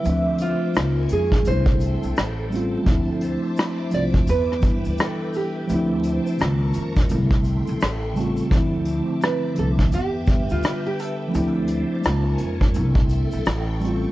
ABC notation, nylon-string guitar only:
X:1
M:4/4
L:1/16
Q:"Swing 16ths" 1/4=85
K:Ddor
V:1 name="Nylon-string guitar"
E2 F4 ^G2 c6 z2 | z6 d2 B4 A2 G2- | G8- G2 z6 | z4 B2 A2 G3 F2 G A2- |
A2 z12 z2 |]